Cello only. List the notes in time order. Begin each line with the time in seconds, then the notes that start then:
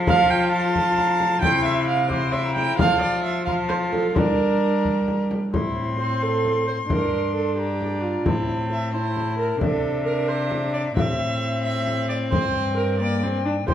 Already playing: F3
1.42 C3
2.78 F3
4.15 G3
5.53 A2
6.90 G2
8.25 A2
9.61 C3
10.96 A2
12.32 G2
13.68 C3